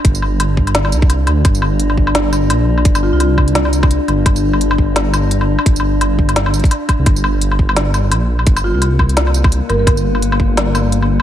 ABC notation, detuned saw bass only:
X:1
M:4/4
L:1/16
Q:"Swing 16ths" 1/4=171
K:Gm
V:1 name="Detuned saw bass" clef=bass
G,,,8- G,,,2 C,,4 D,,2 | G,,,12 B,,,4 | G,,,3 C,,8- C,,2 z G,,,2- | G,,,6 G,,,8- G,,, z |
G,,,8- G,,,3 z4 C,, | G,,,12 B,,,4 | G,,,3 C,,8- C,,2 z G,,,2- | G,,,6 G,,,8- G,,, z |]